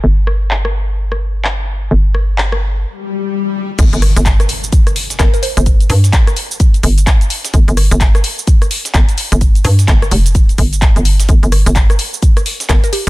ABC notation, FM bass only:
X:1
M:4/4
L:1/16
Q:"Swing 16ths" 1/4=128
K:Gm
V:1 name="FM bass" clef=bass
G,,,16 | G,,,8 z8 | G,,, G,,,2 G,,,3 z6 G,,, z2 G,,,- | G,,,2 G,,2 z6 G,,,2 z4 |
G,,, G,,,2 G,,,3 z6 G,,, z2 G,,,- | G,,,2 G,,2 G,,,2 F,,,4 G,,,3 G,,,3 | G,,, G,,,2 G,,,3 z6 G,,, z3 |]